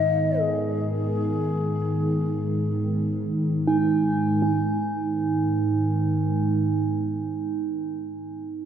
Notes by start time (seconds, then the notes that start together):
Already playing: G#2 D#3 B3 D#5
0.39 G#4
3.67 D#4
4.38 G#2 D#3
4.42 D#4